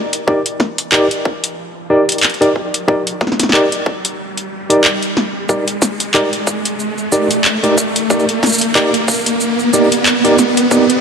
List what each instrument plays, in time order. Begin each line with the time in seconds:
Already playing: riser
0.13 closed hi-hat
0.27 tine electric piano D#4 G4 A#4 D5, kick
0.46 closed hi-hat
0.60 kick, snare
0.78 closed hi-hat
0.92 tine electric piano D#4 G4 A#4 D5, clap
1.11 closed hi-hat
1.25 kick
1.44 closed hi-hat
1.90 tine electric piano D#4 G4 A#4 D5
2.09 closed hi-hat
2.12 closed hi-hat
2.18 closed hi-hat
2.23 clap, closed hi-hat
2.30 closed hi-hat
2.34 closed hi-hat
2.41 tine electric piano D#4 G4 A#4 D5, closed hi-hat
2.56 kick
2.74 closed hi-hat
2.88 tine electric piano D#4 G4 A#4 D5, kick
3.07 closed hi-hat
3.21 kick, snare
3.27 snare
3.32 snare
3.40 snare, closed hi-hat
3.43 snare
3.49 tine electric piano D#4 G4 A#4 D5, snare
3.54 clap
3.72 closed hi-hat
3.86 kick
4.05 closed hi-hat
4.37 closed hi-hat
4.70 tine electric piano D#4 G4 A#4 D5, closed hi-hat
4.84 clap
5.03 closed hi-hat
5.17 snare
5.49 tine electric piano D#4 G4 A#4 D5, kick, shaker
5.68 closed hi-hat, shaker
5.82 kick, snare, shaker
6.00 closed hi-hat, shaker
6.14 tine electric piano D#4 G4 A#4 D5, clap, shaker
6.33 closed hi-hat, shaker
6.47 kick, shaker
6.65 closed hi-hat, shaker
6.79 shaker
6.98 shaker
7.12 tine electric piano D#4 G4 A#4 D5, shaker
7.31 closed hi-hat, shaker
7.45 clap, shaker
7.63 tine electric piano D#4 G4 A#4 D5, closed hi-hat, shaker
7.78 kick, shaker
7.96 closed hi-hat, shaker
8.10 tine electric piano D#4 G4 A#4 D5, kick, shaker
8.19 shaker
8.29 closed hi-hat
8.43 kick, snare, shaker
8.46 shaker
8.49 shaker
8.52 shaker
8.58 closed hi-hat, shaker
8.75 tine electric piano D#4 G4 A#4 D5, clap, shaker
8.94 closed hi-hat, shaker
9.08 kick, shaker
9.11 shaker
9.13 shaker
9.16 shaker
9.19 shaker
9.21 shaker
9.24 closed hi-hat, shaker
9.26 shaker
9.40 shaker
9.59 shaker
9.73 tine electric piano D#4 G4 A#4 D5, shaker
9.92 closed hi-hat, shaker
10.06 clap, shaker
10.24 tine electric piano D#4 G4 A#4 D5, closed hi-hat, shaker
10.38 snare, shaker
10.57 closed hi-hat, shaker
10.71 tine electric piano D#4 G4 A#4 D5, kick, shaker
10.90 closed hi-hat, shaker